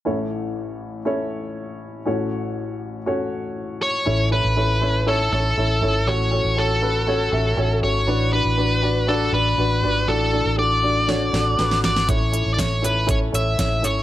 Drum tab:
HH |----------------|----------------|----------------|----------------|
SD |----------------|----------------|----------------|----------------|
BD |----------------|----------------|----------------|----------------|

HH |----------------|----------------|x-x-x-x-x-x-x-x-|
SD |----------------|--------o-o-oooo|----o-------o---|
BD |----------------|----------------|o---o---o---o---|